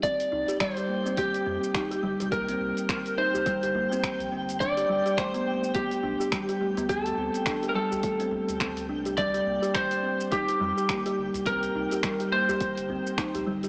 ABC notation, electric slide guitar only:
X:1
M:4/4
L:1/16
Q:"Swing 16ths" 1/4=105
K:Cdor
V:1 name="Electric slide guitar"
d4 c4 G8 | B6 c8 z2 | d4 c4 G8 | A4- A3/2 B/2 A8 z2 |
d4 c4 G8 | B6 c8 z2 |]